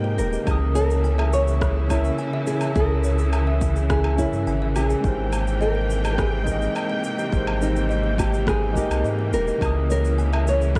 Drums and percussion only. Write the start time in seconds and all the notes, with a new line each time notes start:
0.19 shaker
0.33 shaker
0.47 kick, low woodblock, shaker
0.76 shaker
0.91 shaker
1.05 shaker
1.19 low woodblock
1.33 shaker
1.48 shaker
1.61 kick, cross-stick, shaker
1.90 kick, low woodblock, shaker
2.05 shaker
2.18 shaker
2.47 shaker
2.61 low woodblock, shaker
2.75 kick, shaker
3.04 shaker
3.19 shaker
3.33 low woodblock, shaker
3.61 kick, shaker
3.76 shaker
3.90 kick, cross-stick, shaker
4.04 low woodblock
4.18 kick, shaker
4.33 shaker
4.47 shaker
4.76 low woodblock, shaker
4.90 shaker
5.04 kick, shaker
5.33 low woodblock, shaker
5.47 shaker
5.62 shaker
5.90 shaker
6.05 low woodblock, shaker
6.18 kick, cross-stick, shaker
6.47 kick, shaker
6.62 shaker
6.76 low woodblock, shaker
7.04 shaker
7.19 shaker
7.33 kick, shaker
7.47 low woodblock
7.62 shaker
7.76 shaker
7.91 shaker
8.18 kick, low woodblock, shaker
8.34 shaker
8.47 kick, cross-stick, shaker
8.75 kick, shaker
8.91 low woodblock, shaker
9.05 shaker
9.33 shaker
9.48 shaker
9.61 kick, low woodblock, shaker
9.90 shaker
10.05 shaker
10.19 shaker
10.33 low woodblock
10.47 shaker
10.62 shaker
10.75 kick, cross-stick, shaker